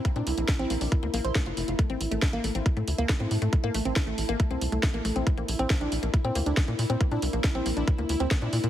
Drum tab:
HH |xxoxxxooxxoxxxox|xxoxxxoxxxoxxxox|xxoxxxoxxxoxxxox|xxoxxxoxxxoxxxox|
SD |----o-------o---|----o-------o---|----o-------o---|----o-------o---|
BD |o---o---o---o---|o---o---o---o---|o---o---o---o---|o---o---o---o---|

HH |xxoxxxoxxxoxxxox|
SD |----o-------o---|
BD |o---o---o---o---|